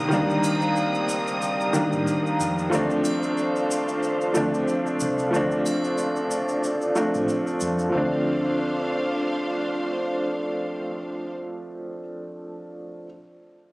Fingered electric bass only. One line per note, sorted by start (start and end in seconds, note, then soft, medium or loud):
0.13 0.28 D2 medium
1.93 2.06 A1 medium
2.40 2.69 F2 medium
2.74 2.89 D2 medium
4.36 4.52 D2 medium
5.02 5.30 C2 medium
5.34 5.50 D2 medium
7.15 7.27 A1 medium
7.62 7.91 F2 medium
7.95 9.86 D2 medium